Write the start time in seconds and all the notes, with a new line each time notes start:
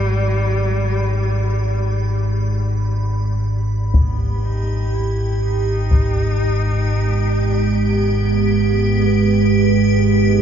Already playing: G#1 G#2 G3 B5
3.94 G#1 G#2 G#3 B3 G4, taiko
4.44 D#4
4.85 B3
4.94 E4
5.43 D#4
5.91 taiko
6.95 D#4
7.20 B4
7.87 B3
9.79 B3